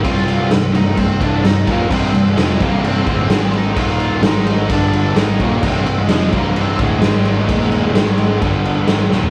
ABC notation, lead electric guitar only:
X:1
M:4/4
L:1/16
Q:1/4=129
K:Cm
V:1 name="Lead electric guitar"
[Ff]4 z2 [Ee]2 [Cc]2 [Dd]2 [Ee]2 [B,B]2 | [Cc]3 [A,A]3 [B,B]2 [Cc]6 [Ee]2 | [Ff]4 [Ee]4 [Dd]4 [Ee]2 [B,B]2 | [Cc]3 [A,A]3 [B,B]2 [Cc]2 [A,A]6- |
[A,A]8 z8 |]